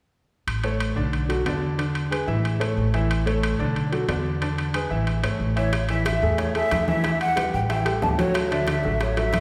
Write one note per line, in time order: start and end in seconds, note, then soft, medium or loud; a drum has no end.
0.47 0.93 A1 medium
0.47 high timbale loud
0.64 0.91 A3 medium
0.64 0.91 A4 medium
0.64 0.91 C#5 medium
0.64 high timbale medium
0.80 high timbale medium
0.96 1.43 B1 medium
0.96 1.23 D3 medium
0.96 1.23 D4 medium
0.96 1.23 D5 medium
1.13 high timbale medium
1.29 1.43 F#3 medium
1.29 1.43 F#4 medium
1.29 1.43 A4 medium
1.29 high timbale medium
1.45 2.22 E2 medium
1.45 1.73 D3 medium
1.45 1.73 D4 medium
1.45 1.73 D5 medium
1.45 high timbale medium
1.45 low timbale medium
1.78 2.05 D3 medium
1.78 2.05 D4 medium
1.78 2.06 D5 medium
1.78 high timbale medium
1.95 high timbale medium
2.11 2.25 G#3 medium
2.11 2.25 G#4 medium
2.11 2.25 B4 medium
2.11 high timbale medium
2.27 2.74 A1 loud
2.27 2.55 E3 medium
2.27 2.55 E4 medium
2.27 2.55 E5 medium
2.45 high timbale medium
2.60 2.87 A3 medium
2.60 2.87 A4 medium
2.60 2.88 C#5 medium
2.60 high timbale medium
2.77 3.54 A1 medium
2.94 3.21 E3 medium
2.94 3.21 E4 medium
2.94 3.21 E5 medium
2.94 high timbale medium
3.11 high timbale medium
3.26 3.53 A3 medium
3.26 3.54 A4 medium
3.26 3.54 C#5 medium
3.26 high timbale medium
3.43 high timbale loud
3.59 4.06 B1 medium
3.59 3.86 D3 medium
3.59 3.86 D4 medium
3.59 3.87 D5 medium
3.76 high timbale medium
3.92 4.06 F#3 medium
3.92 4.06 F#4 medium
3.92 4.06 A4 medium
3.92 high timbale medium
4.08 4.85 E2 medium
4.08 4.35 D3 medium
4.08 4.36 D4 medium
4.08 4.36 D5 medium
4.08 high timbale medium
4.08 low timbale medium
4.41 4.68 D3 medium
4.41 4.69 D4 medium
4.41 4.69 D5 medium
4.41 high timbale medium
4.58 high timbale medium
4.74 4.88 G#3 medium
4.74 4.88 G#4 medium
4.74 4.88 B4 medium
4.74 high timbale medium
4.90 5.21 A1 medium
4.90 5.17 E3 medium
4.90 5.18 E4 medium
4.90 5.18 E5 medium
5.07 high timbale medium
5.23 5.39 G#1 medium
5.23 5.50 A3 medium
5.23 5.50 A4 medium
5.23 5.51 C#5 medium
5.23 high timbale loud
5.40 6.16 A1 medium
5.56 5.70 E3 medium
5.56 5.70 E4 medium
5.56 5.88 C#5 medium
5.56 5.70 E5 medium
5.56 high timbale medium
5.73 high bongo medium
5.73 high conga soft
5.73 high timbale loud
5.89 6.17 E3 medium
5.89 6.17 E4 medium
5.89 6.05 E5 loud
5.89 6.17 E5 medium
5.89 high conga soft
5.89 high timbale medium
6.06 6.40 E5 medium
6.06 high bongo medium
6.06 high conga soft
6.06 high timbale loud
6.22 6.68 E2 loud
6.22 6.49 A3 medium
6.22 6.50 G#4 medium
6.22 6.50 A4 medium
6.22 high conga soft
6.38 6.55 C#5 medium
6.38 high bongo medium
6.38 high conga soft
6.38 high timbale medium
6.55 6.82 A3 medium
6.55 6.82 G#4 medium
6.55 6.82 A4 medium
6.55 6.86 E5 loud
6.55 high conga soft
6.55 high timbale medium
6.71 7.48 E2 medium
6.71 high bongo medium
6.71 low bongo medium
6.71 high conga medium
6.71 high timbale medium
6.88 7.01 E3 medium
6.88 7.02 E4 medium
6.88 7.19 E5 loud
6.88 7.02 E5 medium
6.88 high conga medium
7.03 7.31 E3 medium
7.03 7.31 E4 medium
7.03 7.31 E5 medium
7.03 high bongo medium
7.03 high conga soft
7.03 high timbale medium
7.21 7.51 F#5 loud
7.21 high conga soft
7.21 high timbale medium
7.36 7.63 G3 medium
7.36 7.64 G4 medium
7.36 7.64 B4 medium
7.36 high bongo medium
7.36 high conga medium
7.36 high timbale medium
7.54 7.99 A1 medium
7.54 7.60 G5 loud
7.54 high bongo soft
7.54 high conga soft
7.69 7.83 E3 medium
7.69 7.83 E4 medium
7.69 7.83 E5 medium
7.69 8.01 G5 medium
7.69 high bongo medium
7.69 high conga soft
7.69 high timbale medium
7.85 8.12 G3 medium
7.85 8.13 G4 medium
7.85 8.13 A4 medium
7.85 high bongo soft
7.85 high conga soft
7.85 high timbale loud
8.02 8.79 D2 medium
8.02 8.08 A5 loud
8.02 high bongo medium
8.02 low bongo medium
8.02 high conga medium
8.02 low timbale medium
8.18 8.45 F#3 medium
8.18 8.46 F#4 medium
8.18 8.46 A4 medium
8.18 8.53 C#5 medium
8.18 high bongo soft
8.18 high conga medium
8.18 high timbale medium
8.34 high bongo medium
8.34 high conga soft
8.34 high timbale loud
8.51 8.78 D3 medium
8.51 8.79 D4 medium
8.51 8.79 D5 medium
8.51 8.68 E5 loud
8.51 high conga soft
8.51 high timbale medium
8.67 8.99 E5 medium
8.67 high bongo medium
8.67 high conga medium
8.67 high timbale medium
8.83 9.30 A1 medium
8.83 9.11 F#3 medium
8.83 9.11 F#4 medium
8.83 9.12 A4 medium
8.83 high conga soft
9.00 9.20 C#5 medium
9.00 high bongo medium
9.00 high conga soft
9.00 high timbale medium
9.17 9.40 F#3 medium
9.17 9.40 F#4 medium
9.17 9.40 A4 medium
9.17 9.40 E5 loud
9.17 high conga soft
9.17 high timbale medium
9.33 9.40 G1 medium
9.33 high bongo medium
9.33 low bongo medium
9.33 high conga medium
9.33 high timbale medium